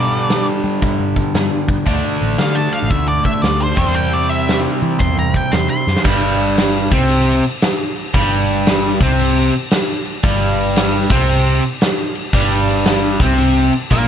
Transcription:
0.00 1.85 G2 medium
0.00 0.48 B2 medium
0.00 1.85 D3 medium
0.00 1.86 G3 medium
0.00 0.45 D5 medium
0.11 closed hi-hat medium
0.29 snare loud
0.29 closed hi-hat medium
0.63 0.79 G3 medium
0.63 closed hi-hat medium
0.82 0.96 G2 medium
0.82 kick medium
0.82 closed hi-hat medium
0.99 1.21 G2 medium
1.16 kick medium
1.16 closed hi-hat medium
1.34 1.48 G2 loud
1.34 snare loud
1.34 closed hi-hat medium
1.68 1.76 G2 medium
1.68 kick medium
1.68 closed hi-hat medium
1.86 2.01 D2 medium
1.86 3.75 D3 medium
1.86 3.76 A3 medium
1.86 3.76 D4 medium
1.86 kick loud
1.86 closed hi-hat medium
2.21 2.36 A1 medium
2.21 closed hi-hat medium
2.39 2.67 D3 medium
2.39 2.56 F5 loud
2.39 snare loud
2.39 closed hi-hat medium
2.55 2.73 A5 medium
2.73 2.90 F5 medium
2.73 closed hi-hat medium
2.83 2.90 A1 medium
2.90 3.19 D2 medium
2.90 3.07 E5 medium
2.90 kick loud
2.90 closed hi-hat medium
3.08 3.25 D5 medium
3.25 3.42 E5 medium
3.25 kick medium
3.25 closed hi-hat medium
3.42 3.72 D2 loud
3.42 3.59 D5 medium
3.42 snare loud
3.42 closed hi-hat medium
3.61 3.95 C5 medium
3.76 3.85 E2 medium
3.76 5.84 C3 medium
3.76 5.85 G3 medium
3.76 5.85 C4 medium
3.76 kick loud
3.76 closed hi-hat medium
3.87 4.66 E2 medium
3.95 4.12 G5 medium
3.95 closed hi-hat medium
4.13 4.29 D5 medium
4.29 4.58 E5 medium
4.29 closed hi-hat medium
4.48 snare loud
4.48 closed hi-hat medium
4.82 4.97 E3 medium
4.82 closed hi-hat medium
5.00 5.14 E2 medium
5.00 5.17 C6 medium
5.00 kick loud
5.00 closed hi-hat medium
5.17 5.39 E2 medium
5.17 5.35 A#5 medium
5.34 5.53 G5 medium
5.34 kick medium
5.34 closed hi-hat medium
5.52 5.67 E2 loud
5.52 5.69 C6 medium
5.52 snare loud
5.52 closed hi-hat medium
5.70 5.98 C6 loud
5.87 5.95 F#2 medium
5.87 snare medium
5.97 snare medium
6.05 6.87 G1 medium
6.05 6.90 G2 medium
6.05 6.91 G3 medium
6.05 kick loud
6.05 crash loud
6.05 crash medium
6.40 crash medium
6.57 snare loud
6.57 crash medium
6.91 7.40 C2 loud
6.91 7.43 C3 loud
6.91 7.43 C4 loud
6.91 kick loud
6.91 crash medium
7.09 crash medium
7.44 crash medium
7.62 snare loud
7.62 crash medium
7.96 crash medium
8.14 8.97 G1 medium
8.14 9.00 G2 medium
8.14 9.00 G3 loud
8.14 kick loud
8.14 crash medium
8.48 crash medium
8.66 snare loud
8.66 crash medium
9.00 9.49 C2 medium
9.00 9.52 C3 medium
9.00 9.52 C4 loud
9.00 kick loud
9.00 crash medium
9.19 crash medium
9.53 crash medium
9.71 snare loud
9.71 crash medium
10.05 crash medium
10.23 11.06 G1 loud
10.23 11.09 G2 medium
10.23 11.10 G3 loud
10.23 kick loud
10.23 crash medium
10.58 crash medium
10.76 snare loud
10.76 crash medium
11.10 11.59 C2 loud
11.10 11.62 C3 loud
11.10 11.62 C4 loud
11.10 kick loud
11.10 crash medium
11.29 crash medium
11.63 crash medium
11.81 snare loud
11.81 crash medium
12.15 crash medium
12.33 13.16 G1 medium
12.33 13.20 G2 medium
12.33 13.20 G3 loud
12.33 kick loud
12.33 crash medium
12.67 snare soft
12.67 crash medium
12.85 snare loud
12.85 crash medium
13.20 13.69 C2 medium
13.20 13.72 C3 medium
13.20 13.72 C4 medium
13.20 kick loud
13.20 crash medium
13.38 crash medium
13.73 crash medium
13.91 14.08 A#1 loud
13.91 14.08 A#2 medium
13.91 14.08 A#3 loud
13.91 kick medium

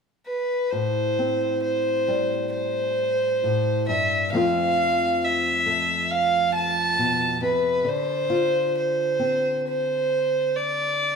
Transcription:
0.27 0.72 B4 soft
0.71 3.42 A2 medium
0.71 1.62 C5 medium
1.19 4.34 C4 soft
1.63 2.49 C5 medium
2.08 4.32 G3 soft
2.54 3.83 C5 medium
3.44 3.88 A2 soft
3.88 4.32 G2 soft
3.88 4.29 E5 medium
4.33 7.82 F2 medium
4.33 7.82 F3 soft
4.33 5.66 A3 soft
4.33 7.02 C4 soft
4.33 7.84 F4 soft
4.33 5.25 F5 medium
5.24 6.13 E5 medium
5.66 7.82 A3 soft
6.11 6.54 F5 medium
6.55 7.39 A5 medium
6.99 7.41 B2 soft
7.41 7.86 C3 soft
7.41 7.90 B4 medium
7.85 11.16 D3 medium
7.85 8.76 C5 medium
8.30 11.16 F4 medium
8.78 9.62 C5 medium
9.19 11.16 C4 soft
9.68 10.58 C5 medium
10.56 11.16 D5 medium

